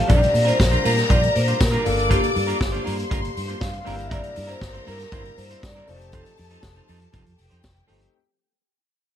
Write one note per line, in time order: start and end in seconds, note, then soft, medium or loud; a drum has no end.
0.00 0.11 A3 medium
0.00 0.08 C4 soft
0.08 0.26 A#1 loud
0.08 0.28 G3 medium
0.08 1.81 C4 medium
0.08 0.21 D4 loud
0.08 1.82 D4 medium
0.08 0.21 F4 loud
0.08 1.82 F4 medium
0.08 1.83 G4 medium
0.08 1.81 A#4 loud
0.08 0.20 A#4 loud
0.08 0.47 D5 loud
0.08 1.81 A#5 loud
0.08 kick loud
0.08 closed hi-hat medium
0.08 tambourine medium
0.21 muted clean electric guitar stroke soft
0.21 closed hi-hat medium
0.21 tambourine soft
0.33 0.51 A#2 medium
0.33 muted clean electric guitar stroke soft
0.33 open hi-hat medium
0.33 tambourine medium
0.45 0.58 G3 medium
0.45 0.58 D4 medium
0.45 0.59 F4 medium
0.45 0.59 A#4 medium
0.45 0.86 C5 medium
0.45 closed hi-hat soft
0.45 tambourine soft
0.60 0.76 A#1 loud
0.60 kick loud
0.60 snare loud
0.60 tambourine medium
0.71 0.83 G3 medium
0.71 0.84 D4 medium
0.71 0.84 F4 medium
0.71 0.85 C5 medium
0.71 closed hi-hat soft
0.84 1.02 A#2 medium
0.84 1.04 G3 medium
0.84 0.97 D4 medium
0.84 0.97 F4 loud
0.84 1.10 A#4 medium
0.84 0.95 A#4 medium
0.84 open hi-hat medium
0.84 tambourine medium
0.97 muted clean electric guitar stroke medium
0.97 snare soft
0.97 closed hi-hat soft
0.97 tambourine soft
1.09 1.26 A#1 loud
1.09 1.29 G3 medium
1.09 1.22 D4 medium
1.09 1.21 F4 loud
1.09 1.22 C5 medium
1.09 1.36 D5 medium
1.09 kick loud
1.09 closed hi-hat medium
1.09 tambourine medium
1.22 muted clean electric guitar stroke medium
1.22 closed hi-hat medium
1.35 1.52 A#2 loud
1.35 1.61 C5 medium
1.35 muted clean electric guitar stroke soft
1.35 open hi-hat medium
1.35 tambourine medium
1.48 1.59 G3 medium
1.48 1.59 D4 medium
1.48 1.60 F4 medium
1.48 1.60 C5 medium
1.48 closed hi-hat medium
1.60 1.77 A#2 loud
1.60 1.84 A#4 loud
1.60 muted clean electric guitar stroke soft
1.60 kick loud
1.60 snare loud
1.60 tambourine loud
1.71 1.85 G3 medium
1.71 1.84 D4 medium
1.71 1.84 F4 medium
1.71 1.85 A#4 medium
1.71 closed hi-hat soft
1.84 2.19 G1 loud
1.84 3.82 A#3 medium
1.84 3.82 D4 medium
1.84 3.83 F4 medium
1.84 3.83 A4 medium
1.84 2.11 A#4 medium
1.84 2.84 D5 medium
1.84 2.84 D6 loud
1.84 muted clean electric guitar stroke soft
1.84 open hi-hat medium
1.84 tambourine medium
1.96 muted clean electric guitar stroke soft
1.96 closed hi-hat soft
1.96 tambourine soft
2.09 2.29 A#3 loud
2.09 2.23 D4 loud
2.09 2.22 F4 loud
2.09 3.66 G4 loud
2.09 2.22 C5 medium
2.09 kick loud
2.09 closed hi-hat medium
2.09 tambourine medium
2.23 muted clean electric guitar stroke medium
2.23 closed hi-hat medium
2.23 tambourine soft
2.35 2.52 G2 medium
2.35 muted clean electric guitar stroke soft
2.35 open hi-hat medium
2.35 tambourine medium
2.47 2.58 A#3 medium
2.47 2.58 D4 medium
2.47 2.59 F4 medium
2.47 2.59 A#4 medium
2.47 closed hi-hat medium
2.47 tambourine soft
2.59 2.77 G1 loud
2.59 muted clean electric guitar stroke soft
2.59 kick loud
2.59 snare loud
2.59 tambourine medium
2.72 2.83 A#3 medium
2.72 2.84 D4 medium
2.72 2.84 F4 medium
2.72 2.86 C5 medium
2.72 closed hi-hat soft
2.84 3.03 G2 loud
2.84 3.04 A#3 medium
2.84 2.98 D4 medium
2.84 2.97 F4 medium
2.84 2.97 A#4 medium
2.84 3.84 C5 medium
2.84 3.84 C6 medium
2.84 open hi-hat medium
2.84 tambourine medium
2.98 muted clean electric guitar stroke soft
2.98 closed hi-hat medium
2.98 tambourine soft
3.10 3.28 G1 loud
3.10 3.30 A#3 medium
3.10 3.22 D4 medium
3.10 3.21 F4 medium
3.10 3.21 A#4 loud
3.10 kick loud
3.10 closed hi-hat medium
3.10 tambourine medium
3.22 muted clean electric guitar stroke medium
3.22 closed hi-hat medium
3.34 3.53 G2 loud
3.34 muted clean electric guitar stroke soft
3.34 open hi-hat medium
3.34 tambourine medium
3.48 3.59 A#3 medium
3.48 3.59 D4 soft
3.48 3.60 F4 medium
3.48 3.61 C5 medium
3.48 closed hi-hat medium
3.60 3.78 G2 loud
3.60 3.85 F5 loud
3.60 muted clean electric guitar stroke soft
3.60 kick loud
3.60 snare loud
3.60 tambourine medium
3.72 muted clean electric guitar stroke soft
3.72 closed hi-hat soft
3.84 4.20 G1 loud
3.84 4.05 G3 medium
3.84 5.09 A#3 medium
3.84 3.97 C4 medium
3.84 5.09 D4 medium
3.84 3.96 E4 medium
3.84 5.10 E4 medium
3.84 5.10 G4 medium
3.84 5.83 A#4 loud
3.84 3.96 A#4 loud
3.84 4.05 F5 medium
3.84 5.83 A#5 loud
3.84 open hi-hat medium
3.84 tambourine medium
3.97 muted clean electric guitar stroke soft
3.97 closed hi-hat soft
3.97 tambourine soft
4.06 4.30 G3 medium
4.06 4.12 E5 medium
4.11 4.23 C4 loud
4.11 4.22 E4 medium
4.11 4.21 A#4 loud
4.11 4.47 D5 loud
4.11 kick loud
4.11 closed hi-hat medium
4.11 tambourine medium
4.22 muted clean electric guitar stroke medium
4.22 closed hi-hat medium
4.35 4.54 G2 loud
4.35 muted clean electric guitar stroke medium
4.35 open hi-hat medium
4.35 tambourine medium
4.47 4.60 G3 medium
4.47 4.60 C4 medium
4.47 4.61 E4 medium
4.47 4.61 A#4 medium
4.47 4.88 C5 medium
4.47 closed hi-hat medium
4.51 tambourine soft
4.61 4.78 G1 loud
4.61 kick loud
4.61 snare loud
4.61 tambourine medium
4.73 4.85 G3 medium
4.73 4.85 C4 medium
4.73 4.86 E4 medium
4.73 4.87 C5 medium
4.73 closed hi-hat soft
4.86 5.04 G2 loud
4.86 5.06 G3 medium
4.86 4.99 C4 medium
4.86 4.99 E4 loud
4.86 4.99 A#4 medium
4.86 5.39 A#4 loud
4.86 open hi-hat medium
4.86 tambourine medium
4.99 muted clean electric guitar stroke soft
4.99 snare soft
4.99 closed hi-hat soft
4.99 tambourine soft
5.12 5.29 G1 loud
5.12 5.31 G3 medium
5.12 5.88 A#3 soft
5.12 5.25 C4 loud
5.12 5.88 D4 soft
5.12 5.88 E4 medium
5.12 5.25 E4 loud
5.12 5.88 G4 medium
5.12 5.25 C5 loud
5.12 kick loud
5.12 closed hi-hat medium
5.12 tambourine medium
5.25 muted clean electric guitar stroke soft
5.25 closed hi-hat medium
5.37 5.54 G2 loud
5.37 5.63 C5 medium
5.37 muted clean electric guitar stroke medium
5.37 open hi-hat medium
5.37 tambourine medium
5.50 5.61 G3 medium
5.50 5.62 C4 medium
5.50 5.62 E4 medium
5.50 5.63 C5 medium
5.50 closed hi-hat medium
5.63 5.79 G2 loud
5.63 5.89 D5 loud
5.63 kick loud
5.63 snare loud
5.63 tambourine loud
5.75 5.88 G3 medium
5.75 5.88 C4 medium
5.75 5.89 E4 medium
5.75 5.89 A#4 medium
5.75 closed hi-hat soft
5.87 6.21 F1 medium
5.87 7.84 A3 medium
5.87 7.85 C4 medium
5.87 7.85 D#4 medium
5.87 5.95 F4 medium
5.87 7.36 A4 medium
5.87 6.14 C5 medium
5.87 7.36 A5 loud
5.87 muted clean electric guitar stroke soft
5.87 open hi-hat medium
5.87 tambourine medium
5.96 7.88 G4 medium
6.01 muted clean electric guitar stroke medium
6.01 closed hi-hat soft
6.01 tambourine soft
6.12 6.32 F3 medium
6.12 6.25 C4 medium
6.12 6.25 D#4 loud
6.12 7.60 A4 medium
6.12 6.25 C5 loud
6.12 kick loud
6.12 closed hi-hat medium
6.12 tambourine medium
6.25 muted clean electric guitar stroke medium
6.25 closed hi-hat medium
6.25 tambourine soft
6.37 6.55 F2 medium
6.37 muted clean electric guitar stroke soft
6.37 open hi-hat medium
6.37 tambourine medium
6.50 6.62 F3 medium
6.50 6.62 C4 medium
6.50 6.63 D#4 medium
6.50 6.63 A4 medium
6.50 closed hi-hat medium
6.50 tambourine soft
6.62 6.80 F1 loud
6.62 kick loud
6.62 snare loud
6.62 tambourine medium
6.76 6.87 F3 medium
6.76 6.87 C4 medium
6.76 6.88 D#4 medium
6.76 6.90 C5 medium
6.76 closed hi-hat soft
6.88 7.05 F2 loud
6.88 7.08 F3 medium
6.88 7.00 C4 medium
6.88 7.00 D#4 loud
6.88 6.99 A4 medium
6.88 open hi-hat medium
6.88 tambourine medium
6.99 muted clean electric guitar stroke soft
6.99 closed hi-hat medium
6.99 tambourine soft
7.12 7.22 F1 loud
7.12 7.32 F3 loud
7.12 7.24 C4 medium
7.12 7.24 D#4 medium
7.12 7.23 A4 medium
7.12 kick loud
7.12 closed hi-hat medium
7.12 tambourine medium
7.24 7.35 F2 loud
7.24 muted clean electric guitar stroke soft
7.24 closed hi-hat soft
7.37 7.47 F1 loud
7.37 8.13 G4 medium
7.37 8.13 G5 medium
7.37 muted clean electric guitar stroke soft
7.37 open hi-hat medium
7.37 tambourine medium
7.50 7.60 F2 loud
7.50 7.62 F3 medium
7.50 7.62 C4 medium
7.50 7.63 D#4 medium
7.50 7.64 C5 medium
7.50 closed hi-hat medium
7.63 7.80 F1 loud
7.63 muted clean electric guitar stroke soft
7.63 kick loud
7.63 snare loud
7.63 tambourine medium
7.75 muted clean electric guitar stroke soft
7.75 closed hi-hat soft
7.87 8.06 G1 medium
7.87 8.07 F3 medium
7.87 8.13 A3 medium
7.87 8.01 C4 medium
7.87 8.14 C4 medium
7.87 8.00 D#4 medium
7.87 8.14 D#4 medium
7.87 8.14 G4 medium
7.87 7.99 A4 medium
7.87 open hi-hat medium
7.87 tambourine medium
8.01 muted clean electric guitar stroke soft
8.01 closed hi-hat soft
8.01 tambourine soft